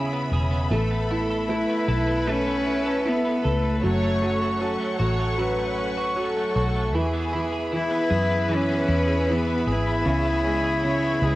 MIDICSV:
0, 0, Header, 1, 7, 480
1, 0, Start_track
1, 0, Key_signature, 4, "major"
1, 0, Tempo, 779221
1, 437, Time_signature, 4, 2, 24, 8
1, 6993, End_track
2, 0, Start_track
2, 0, Title_t, "String section"
2, 0, Program_c, 0, 48
2, 0, Note_on_c, 0, 68, 72
2, 0, Note_on_c, 0, 73, 58
2, 0, Note_on_c, 0, 76, 64
2, 0, Note_on_c, 0, 83, 79
2, 419, Note_off_c, 0, 73, 0
2, 420, Note_off_c, 0, 68, 0
2, 439, Note_on_c, 0, 71, 61
2, 444, Note_on_c, 0, 69, 64
2, 2333, Note_off_c, 0, 83, 0
2, 2334, Note_off_c, 0, 76, 0
2, 2339, Note_off_c, 0, 71, 0
2, 2364, Note_on_c, 0, 73, 65
2, 2366, Note_on_c, 0, 85, 73
2, 2369, Note_on_c, 0, 78, 67
2, 4256, Note_off_c, 0, 69, 0
2, 4262, Note_off_c, 0, 73, 0
2, 4262, Note_off_c, 0, 85, 0
2, 4264, Note_off_c, 0, 78, 0
2, 4287, Note_on_c, 0, 83, 78
2, 4289, Note_on_c, 0, 71, 72
2, 4289, Note_on_c, 0, 76, 69
2, 4292, Note_on_c, 0, 68, 72
2, 6184, Note_off_c, 0, 71, 0
2, 6186, Note_off_c, 0, 68, 0
2, 6202, Note_on_c, 0, 73, 66
2, 6204, Note_on_c, 0, 68, 74
2, 6993, Note_off_c, 0, 68, 0
2, 6993, Note_off_c, 0, 73, 0
2, 6993, Note_off_c, 0, 76, 0
2, 6993, Note_off_c, 0, 83, 0
2, 6993, End_track
3, 0, Start_track
3, 0, Title_t, "Violin section"
3, 0, Program_c, 1, 48
3, 434, Note_on_c, 1, 69, 88
3, 891, Note_off_c, 1, 69, 0
3, 918, Note_on_c, 1, 71, 102
3, 2349, Note_on_c, 1, 73, 114
3, 2357, Note_off_c, 1, 71, 0
3, 2833, Note_off_c, 1, 73, 0
3, 2837, Note_on_c, 1, 69, 94
3, 3072, Note_on_c, 1, 73, 96
3, 3077, Note_off_c, 1, 69, 0
3, 3298, Note_off_c, 1, 73, 0
3, 3316, Note_on_c, 1, 71, 97
3, 3796, Note_off_c, 1, 71, 0
3, 3810, Note_on_c, 1, 69, 90
3, 4259, Note_off_c, 1, 69, 0
3, 4278, Note_on_c, 1, 68, 99
3, 4758, Note_off_c, 1, 68, 0
3, 4758, Note_on_c, 1, 71, 101
3, 6197, Note_off_c, 1, 71, 0
3, 6205, Note_on_c, 1, 68, 87
3, 6680, Note_on_c, 1, 73, 88
3, 6681, Note_off_c, 1, 68, 0
3, 6902, Note_off_c, 1, 73, 0
3, 6923, Note_on_c, 1, 71, 96
3, 6993, Note_off_c, 1, 71, 0
3, 6993, End_track
4, 0, Start_track
4, 0, Title_t, "Cello"
4, 0, Program_c, 2, 42
4, 923, Note_on_c, 2, 64, 90
4, 1415, Note_on_c, 2, 61, 107
4, 1424, Note_off_c, 2, 64, 0
4, 1895, Note_on_c, 2, 59, 85
4, 1904, Note_off_c, 2, 61, 0
4, 2138, Note_on_c, 2, 57, 83
4, 2147, Note_off_c, 2, 59, 0
4, 3087, Note_off_c, 2, 57, 0
4, 4780, Note_on_c, 2, 64, 106
4, 5257, Note_on_c, 2, 61, 106
4, 5266, Note_off_c, 2, 64, 0
4, 5736, Note_on_c, 2, 59, 89
4, 5745, Note_off_c, 2, 61, 0
4, 5981, Note_on_c, 2, 64, 96
4, 5990, Note_off_c, 2, 59, 0
4, 6993, Note_off_c, 2, 64, 0
4, 6993, End_track
5, 0, Start_track
5, 0, Title_t, "Clean electric guitar"
5, 0, Program_c, 3, 27
5, 0, Note_on_c, 3, 49, 71
5, 0, Note_on_c, 3, 59, 52
5, 0, Note_on_c, 3, 64, 53
5, 0, Note_on_c, 3, 68, 62
5, 77, Note_off_c, 3, 59, 0
5, 80, Note_on_c, 3, 59, 51
5, 197, Note_off_c, 3, 68, 0
5, 203, Note_on_c, 3, 68, 53
5, 312, Note_off_c, 3, 59, 0
5, 314, Note_on_c, 3, 59, 53
5, 440, Note_on_c, 3, 57, 75
5, 484, Note_off_c, 3, 49, 0
5, 488, Note_off_c, 3, 68, 0
5, 558, Note_off_c, 3, 59, 0
5, 561, Note_on_c, 3, 59, 57
5, 681, Note_off_c, 3, 64, 0
5, 683, Note_on_c, 3, 64, 60
5, 804, Note_on_c, 3, 69, 61
5, 916, Note_off_c, 3, 64, 0
5, 924, Note_on_c, 3, 64, 57
5, 1037, Note_off_c, 3, 59, 0
5, 1044, Note_on_c, 3, 59, 53
5, 1158, Note_off_c, 3, 69, 0
5, 1160, Note_on_c, 3, 69, 60
5, 1273, Note_off_c, 3, 59, 0
5, 1281, Note_on_c, 3, 59, 54
5, 1395, Note_off_c, 3, 57, 0
5, 1397, Note_on_c, 3, 57, 74
5, 1512, Note_off_c, 3, 59, 0
5, 1520, Note_on_c, 3, 59, 58
5, 1633, Note_off_c, 3, 64, 0
5, 1640, Note_on_c, 3, 64, 56
5, 1760, Note_off_c, 3, 69, 0
5, 1762, Note_on_c, 3, 69, 67
5, 1874, Note_off_c, 3, 64, 0
5, 1881, Note_on_c, 3, 64, 55
5, 1994, Note_off_c, 3, 59, 0
5, 2002, Note_on_c, 3, 59, 53
5, 2119, Note_off_c, 3, 69, 0
5, 2122, Note_on_c, 3, 69, 62
5, 2233, Note_off_c, 3, 59, 0
5, 2240, Note_on_c, 3, 59, 52
5, 2360, Note_on_c, 3, 42, 81
5, 2407, Note_off_c, 3, 59, 0
5, 2407, Note_off_c, 3, 64, 0
5, 2481, Note_off_c, 3, 57, 0
5, 2481, Note_on_c, 3, 57, 58
5, 2601, Note_on_c, 3, 61, 63
5, 2718, Note_off_c, 3, 69, 0
5, 2721, Note_on_c, 3, 66, 60
5, 2833, Note_off_c, 3, 61, 0
5, 2840, Note_on_c, 3, 61, 55
5, 2949, Note_off_c, 3, 57, 0
5, 2956, Note_on_c, 3, 57, 56
5, 3068, Note_off_c, 3, 66, 0
5, 3075, Note_on_c, 3, 66, 62
5, 3190, Note_off_c, 3, 57, 0
5, 3198, Note_on_c, 3, 57, 55
5, 3311, Note_off_c, 3, 42, 0
5, 3318, Note_on_c, 3, 42, 76
5, 3431, Note_off_c, 3, 57, 0
5, 3439, Note_on_c, 3, 57, 60
5, 3554, Note_off_c, 3, 61, 0
5, 3561, Note_on_c, 3, 61, 55
5, 3673, Note_off_c, 3, 66, 0
5, 3681, Note_on_c, 3, 66, 68
5, 3788, Note_off_c, 3, 61, 0
5, 3795, Note_on_c, 3, 61, 53
5, 3914, Note_off_c, 3, 57, 0
5, 3921, Note_on_c, 3, 57, 59
5, 4031, Note_off_c, 3, 66, 0
5, 4039, Note_on_c, 3, 66, 58
5, 4152, Note_off_c, 3, 57, 0
5, 4159, Note_on_c, 3, 57, 51
5, 4280, Note_on_c, 3, 52, 76
5, 4324, Note_off_c, 3, 61, 0
5, 4326, Note_off_c, 3, 42, 0
5, 4326, Note_off_c, 3, 57, 0
5, 4326, Note_off_c, 3, 66, 0
5, 4394, Note_on_c, 3, 59, 55
5, 4515, Note_on_c, 3, 64, 62
5, 4636, Note_on_c, 3, 68, 57
5, 4753, Note_off_c, 3, 64, 0
5, 4755, Note_on_c, 3, 64, 54
5, 4868, Note_off_c, 3, 59, 0
5, 4870, Note_on_c, 3, 59, 61
5, 4989, Note_off_c, 3, 68, 0
5, 4991, Note_on_c, 3, 68, 66
5, 5107, Note_off_c, 3, 59, 0
5, 5109, Note_on_c, 3, 59, 52
5, 5227, Note_off_c, 3, 52, 0
5, 5229, Note_on_c, 3, 52, 82
5, 5349, Note_off_c, 3, 59, 0
5, 5352, Note_on_c, 3, 59, 60
5, 5467, Note_off_c, 3, 64, 0
5, 5470, Note_on_c, 3, 64, 60
5, 5589, Note_off_c, 3, 68, 0
5, 5592, Note_on_c, 3, 68, 66
5, 5714, Note_off_c, 3, 64, 0
5, 5716, Note_on_c, 3, 64, 58
5, 5835, Note_off_c, 3, 59, 0
5, 5838, Note_on_c, 3, 59, 56
5, 5958, Note_off_c, 3, 68, 0
5, 5960, Note_on_c, 3, 68, 62
5, 6079, Note_off_c, 3, 59, 0
5, 6081, Note_on_c, 3, 59, 57
5, 6194, Note_on_c, 3, 49, 76
5, 6314, Note_off_c, 3, 59, 0
5, 6316, Note_on_c, 3, 59, 54
5, 6432, Note_off_c, 3, 64, 0
5, 6434, Note_on_c, 3, 61, 58
5, 6551, Note_off_c, 3, 68, 0
5, 6554, Note_on_c, 3, 68, 59
5, 6669, Note_off_c, 3, 61, 0
5, 6676, Note_on_c, 3, 61, 56
5, 6794, Note_off_c, 3, 59, 0
5, 6796, Note_on_c, 3, 59, 57
5, 6910, Note_off_c, 3, 68, 0
5, 6918, Note_on_c, 3, 68, 62
5, 6993, Note_off_c, 3, 49, 0
5, 6993, Note_off_c, 3, 52, 0
5, 6993, Note_off_c, 3, 59, 0
5, 6993, Note_off_c, 3, 61, 0
5, 6993, Note_off_c, 3, 68, 0
5, 6993, End_track
6, 0, Start_track
6, 0, Title_t, "Upright piano"
6, 0, Program_c, 4, 0
6, 0, Control_c, 4, 64, 127
6, 0, Note_on_c, 4, 49, 49
6, 426, Note_off_c, 4, 49, 0
6, 437, Note_on_c, 4, 57, 58
6, 445, Control_c, 4, 64, 0
6, 571, Control_c, 4, 64, 127
6, 685, Note_on_c, 4, 64, 47
6, 909, Note_off_c, 4, 57, 0
6, 918, Note_on_c, 4, 57, 52
6, 1146, Note_off_c, 4, 64, 0
6, 1156, Note_on_c, 4, 64, 53
6, 1388, Note_off_c, 4, 57, 0
6, 1398, Note_on_c, 4, 57, 53
6, 1868, Note_off_c, 4, 64, 0
6, 1877, Note_on_c, 4, 64, 52
6, 2333, Note_off_c, 4, 57, 0
6, 2343, Note_off_c, 4, 64, 0
6, 2358, Note_on_c, 4, 54, 64
6, 2365, Control_c, 4, 64, 0
6, 2460, Control_c, 4, 64, 127
6, 2594, Note_off_c, 4, 54, 0
6, 2603, Note_on_c, 4, 54, 47
6, 2828, Note_off_c, 4, 54, 0
6, 2837, Note_on_c, 4, 54, 54
6, 3069, Note_off_c, 4, 54, 0
6, 3079, Note_on_c, 4, 54, 50
6, 3299, Note_off_c, 4, 54, 0
6, 3309, Note_on_c, 4, 54, 62
6, 3784, Note_off_c, 4, 54, 0
6, 3793, Note_on_c, 4, 54, 51
6, 4261, Note_off_c, 4, 54, 0
6, 4277, Note_on_c, 4, 52, 61
6, 4286, Control_c, 4, 64, 0
6, 4385, Control_c, 4, 64, 127
6, 4514, Note_off_c, 4, 52, 0
6, 4523, Note_on_c, 4, 52, 50
6, 4749, Note_off_c, 4, 52, 0
6, 4759, Note_on_c, 4, 52, 57
6, 4988, Note_off_c, 4, 52, 0
6, 4997, Note_on_c, 4, 52, 49
6, 5229, Note_off_c, 4, 52, 0
6, 5238, Note_on_c, 4, 52, 55
6, 5714, Note_off_c, 4, 52, 0
6, 5724, Note_on_c, 4, 52, 49
6, 6186, Note_off_c, 4, 52, 0
6, 6194, Note_on_c, 4, 49, 61
6, 6204, Control_c, 4, 64, 0
6, 6328, Control_c, 4, 64, 127
6, 6449, Note_on_c, 4, 56, 52
6, 6672, Note_off_c, 4, 49, 0
6, 6681, Note_on_c, 4, 49, 52
6, 6908, Note_off_c, 4, 56, 0
6, 6917, Note_on_c, 4, 56, 50
6, 6993, Note_off_c, 4, 49, 0
6, 6993, Note_off_c, 4, 56, 0
6, 6993, End_track
7, 0, Start_track
7, 0, Title_t, "Fingered electric bass"
7, 0, Program_c, 5, 33
7, 0, Note_on_c, 5, 39, 78
7, 172, Note_off_c, 5, 39, 0
7, 193, Note_on_c, 5, 28, 90
7, 418, Note_off_c, 5, 28, 0
7, 434, Note_on_c, 5, 33, 91
7, 1011, Note_off_c, 5, 33, 0
7, 1159, Note_on_c, 5, 35, 83
7, 2094, Note_off_c, 5, 35, 0
7, 2125, Note_on_c, 5, 37, 77
7, 2345, Note_off_c, 5, 37, 0
7, 2362, Note_on_c, 5, 30, 89
7, 2935, Note_off_c, 5, 30, 0
7, 3078, Note_on_c, 5, 33, 83
7, 4013, Note_off_c, 5, 33, 0
7, 4040, Note_on_c, 5, 35, 81
7, 4279, Note_off_c, 5, 35, 0
7, 4279, Note_on_c, 5, 40, 89
7, 4853, Note_off_c, 5, 40, 0
7, 4994, Note_on_c, 5, 42, 98
7, 5451, Note_off_c, 5, 42, 0
7, 5472, Note_on_c, 5, 40, 98
7, 5930, Note_off_c, 5, 40, 0
7, 5955, Note_on_c, 5, 32, 89
7, 6179, Note_off_c, 5, 32, 0
7, 6196, Note_on_c, 5, 37, 86
7, 6892, Note_off_c, 5, 37, 0
7, 6911, Note_on_c, 5, 37, 94
7, 6993, Note_off_c, 5, 37, 0
7, 6993, End_track
0, 0, End_of_file